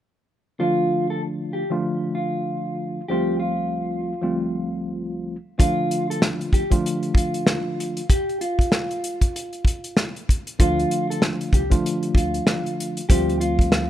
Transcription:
0.59 D3 F3 A3 D4 F4
1.10 A4
1.53 G4
1.70 D3 F3 A3 D4 F4
2.15 F4
3.08 D2 F3 G3 A3 C4 F4 G4
3.40 F4
4.21 D2 F3 G3 A3 C4 F4
5.58 D3 F3 A3 D4 F4, kick, closed hi-hat
5.91 closed hi-hat
6.10 A4, closed hi-hat
6.22 cross-stick, snare
6.41 closed hi-hat
6.53 G4, kick, closed hi-hat
6.70 D3 F3 A3 D4 F4, kick, closed hi-hat
6.86 closed hi-hat
7.03 closed hi-hat
7.14 F4, kick, closed hi-hat
7.34 closed hi-hat
7.47 cross-stick, snare
7.80 closed hi-hat
7.97 closed hi-hat
8.10 G4, kick, closed hi-hat
8.29 closed hi-hat
8.41 F4, closed hi-hat
8.59 kick, closed hi-hat
8.72 cross-stick, snare
8.91 closed hi-hat
9.04 closed hi-hat
9.21 kick, closed hi-hat
9.36 closed hi-hat
9.53 closed hi-hat
9.65 kick, closed hi-hat
9.84 closed hi-hat
9.97 cross-stick, snare
10.16 closed hi-hat
10.29 kick, closed hi-hat
10.47 closed hi-hat
10.59 D2 D3 F3 A3 D4 F4, kick, closed hi-hat
10.79 closed hi-hat
10.91 closed hi-hat
11.10 A4, closed hi-hat
11.22 cross-stick, snare
11.41 closed hi-hat
11.53 C2 G4, kick, closed hi-hat
11.70 D3 F3 A3 D4 F4, kick, closed hi-hat
11.86 closed hi-hat
12.03 closed hi-hat
12.15 D2 F4, kick, closed hi-hat
12.34 closed hi-hat
12.47 cross-stick, snare
12.66 closed hi-hat
12.80 closed hi-hat
12.97 closed hi-hat
13.09 D2 F3 G3 A3 C4 F4 G4, kick, closed hi-hat
13.29 closed hi-hat
13.40 F4, closed hi-hat
13.59 kick, closed hi-hat
13.72 cross-stick, snare

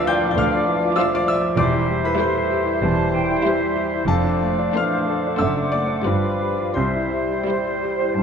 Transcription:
Already playing: D2 E3 F3 D4 F4 B4 D5 E5 F5 B5 E6
0.07 F4 G5 G6
0.24 F3
0.31 G6
0.36 D2 D3 D5 F5 F6
0.52 F4
0.67 E3 F3
0.83 F4
0.96 F3 F4 E5 F5 E6
1.12 F5 D6
1.16 D5
1.28 F4 E5 E6
1.41 F3
1.56 E1 E2 G3 E4 C5 D5 E5 D6
1.72 E4
1.88 G3
2.04 E4 B4 B5
2.18 G3 A3 E4 C5 E5 C6
2.35 C5
2.50 G4
2.65 E4
2.81 E1 E2 G3 A5
2.98 G3
3.12 E3 G5
3.31 E4
3.43 G3 E4 C5 E5
3.61 C5
3.75 G4
3.93 E4
4.06 F1 F2 F3 A3 D4 A4 C5 D5 F5 A5
4.24 D4
4.43 A3
4.59 D4
4.74 E3 A3 D4 C5 D5 F6
4.79 F5
4.93 C5
5.08 D3 A4
5.27 D4
5.38 F#1 F#2 A3 D4 C5 E5 F#5 E6
5.56 D4
5.72 A3 D5 D6
5.88 D4
6.03 G1 G2 F3 G3 F4 B4 F5
6.24 F4
6.41 G3
6.58 F4
6.74 C2 C3 G3 E4 C5 E5 C6
6.95 E4
7.13 G3
7.31 E4
7.46 G3 E4 C5
7.67 C5
7.83 G4
8.01 E4
8.15 G1 G2 A5

